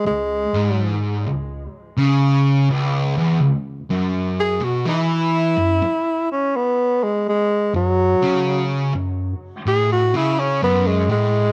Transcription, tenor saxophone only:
X:1
M:4/4
L:1/16
Q:1/4=62
K:F#dor
V:1 name="Tenor saxophone"
G,4 z12 | z2 G F E6 C B,2 G, G,2 | F,4 z4 G F E C B, G, G,2 |]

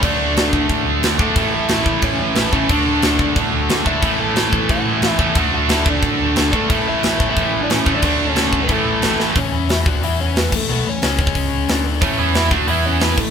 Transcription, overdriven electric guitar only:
X:1
M:4/4
L:1/16
Q:1/4=180
K:A
V:1 name="Overdriven electric guitar"
[Dd]8 z6 [A,A]2- | [A,A]2 [Ee]2 [Ee]4 [Cc]2 [Cc]2 [B,B]2 [Cc]2 | [Dd]8 z6 [Ee]2- | [Ee]2 [Aa]2 [Aa]4 [Ff]6 [Ee]2 |
[Ff]2 [Ff]2 [Ee]2 [Dd]8 [A,A]2- | [A,A]2 [Ee]2 [Ee]3 [Ee]4 [Dd] [Cc]3 [Dd] | [Dd]3 [Cc]4 [B,B] [A,A]6 z2 | [K:Emix] [Cc]4 [Ee]2 [Ff]2 [Ee]2 [Cc]2 [B,B]2 [A,A]2 |
[A,A]2 [Cc]4 [Cc]8 z2 | [Cc]4 [Ee]2 [Ff]2 [Ee]2 [Cc]2 [B,B]2 [A,A]2 |]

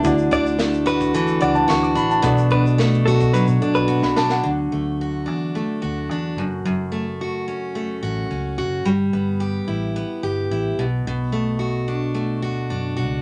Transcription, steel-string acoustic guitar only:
X:1
M:4/4
L:1/8
Q:1/4=109
K:D
V:1 name="Steel-string acoustic guitar"
D, D A, F E, D F D | B,, D A, F F, D F D | D, A, F D A, F D F,, | F,, A, F C A, F C F |
G, B, G E B, G E B,, | B,, A, F D A, F D F |]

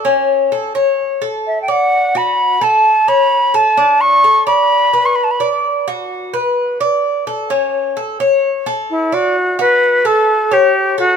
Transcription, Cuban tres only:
X:1
M:4/4
L:1/8
Q:1/4=129
K:Amix
V:1 name="Cuban tres"
C2 A c2 A2 d- | d F2 A2 c2 A | D2 A d2 B2 d- | d F2 B2 d2 A |
C2 A c2 A2 d | z F2 A2 c2 A |]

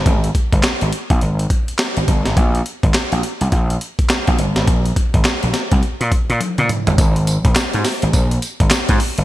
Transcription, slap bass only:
X:1
M:4/4
L:1/16
Q:"Swing 16ths" 1/4=104
K:Ablyd
V:1 name="Slap bass" clef=bass
A,,,2 z G,,, z A,,, z B,,, A,,,2 z3 A,,, G,,, A,,, | B,,,2 z A,,, z B,,, z C,, B,,,2 z3 B,,, G,,, A,,, | B,,,2 z A,,, z B,,, z C,, z B,, z B,, z B,, z G,,, | A,,,3 B,,, z A,, z A,,, B,,,2 z A,,, z A,, z G,,, |]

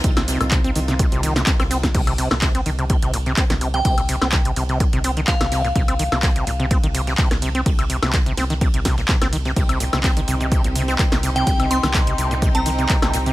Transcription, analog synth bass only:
X:1
M:4/4
L:1/16
Q:"Swing 16ths" 1/4=126
K:Cm
V:1 name="Analog synth bass" clef=bass
C,,3 C,,3 C,,3 C,,3 z C,,3 | C,,3 C,,3 C,,3 C,,3 z C,,3 | C,,3 C,,3 C,,3 C,,3 z C,,3 | C,,3 C,,3 C,,3 C,,3 z C,,3 |
C,,3 C,,3 C,,3 C,,3 z C,,3 | C,,3 C,,3 C,,3 C,,3 z C,,3 | C,,3 C,,3 C,,3 C,,3 z C,,3 |]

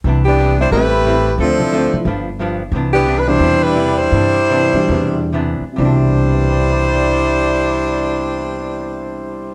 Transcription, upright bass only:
X:1
M:4/4
L:1/8
Q:"Swing" 1/4=162
K:C
V:1 name="Upright bass" clef=bass
C,,4 A,,,4 | D,,3 z G,,,4 | C,,4 E,,4 | G,,3 G,, E,,3 z |
C,,8- | C,,8 |]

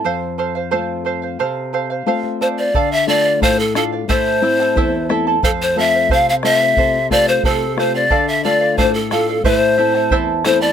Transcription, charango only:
X:1
M:2/4
L:1/16
Q:1/4=90
K:Flyd
V:1 name="Charango"
[Acf]2 [Acf] [cf] [Acf]2 [Acf] [cf] | [Acf]2 [Acf] [cf] [Acf]2 [Acf] [cf] | [Adf]2 [Adf] [df] [Adf]2 [Adf] [df] | [EAcea]2 [EAea] [EAa] [EAcea]2 [EAea] [EAa] |
[Acf]2 [Acf] [cf] [Acf]2 [Acf] [cf] | [Ac]2 [Acf] [cf] [Acf]2 [Acf] [cf] | [Adf]2 [Adf] [df] [Adf]2 [Adf] [df] | [EAcea]2 [EAea] [EAa] [EAcea]2 [EAea] [EAa] |]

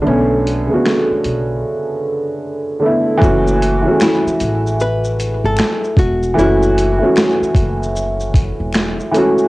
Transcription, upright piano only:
X:1
M:4/4
L:1/16
Q:"Swing 16ths" 1/4=76
K:F#m
V:1 name="Upright piano"
[D,A,B,C]2 z [C,D,A,B,F]6 z4 z [D,A,B,E]2 | [E,A,CF]2 z [E,G,A,CF]6 z6 z | [E,A,CF]2 z [E,A,CF]6 z4 z [E,A,CF]2 |]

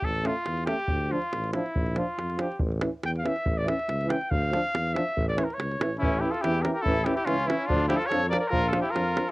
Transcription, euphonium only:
X:1
M:2/4
L:1/8
Q:1/4=142
K:none
V:1 name="Euphonium" clef=bass
z A, z A, | z F, z F, | z F, z F, | z E, z E, |
z E, z E, | z F, z F, | z E, z E, | E, E, E, E, |
E, E, E, E, | F, F, F, F, | F, F, F, F, |]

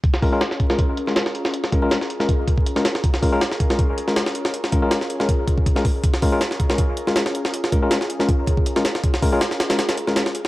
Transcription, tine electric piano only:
X:1
M:4/4
L:1/16
Q:"Swing 16ths" 1/4=160
K:Bbm
V:1 name="Tine electric piano"
z2 [A,DFB] [A,DFB] z3 [A,DFB] z3 [A,DFB]2 z3 | z2 [A,DFB] [A,DFB]2 z2 [A,DFB] z4 z [A,DFB] z2 | z2 [A,DFB] [A,DFB] z3 [A,DFB] z3 [A,DFB]2 z3 | z2 [A,DFB] [A,DFB]2 z2 [A,DFB] z4 z [A,DFB] z2 |
z2 [A,DFB] [A,DFB] z3 [A,DFB] z3 [A,DFB]2 z3 | z2 [A,DFB] [A,DFB]2 z2 [A,DFB] z4 z [A,DFB] z2 | z2 [A,DFB] [A,DFB] z3 [A,DFB] z3 [A,DFB]2 z3 |]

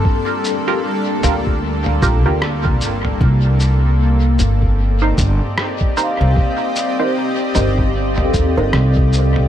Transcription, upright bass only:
X:1
M:4/4
L:1/16
Q:"Swing 16ths" 1/4=76
K:Cdor
V:1 name="Upright bass" clef=bass
z6 D,,4 B,,, D,,3 G,,,2 | C,,6 G,,,4 G,,, z4 C,, | z6 G,,,4 E,, G,,, C,,4 |]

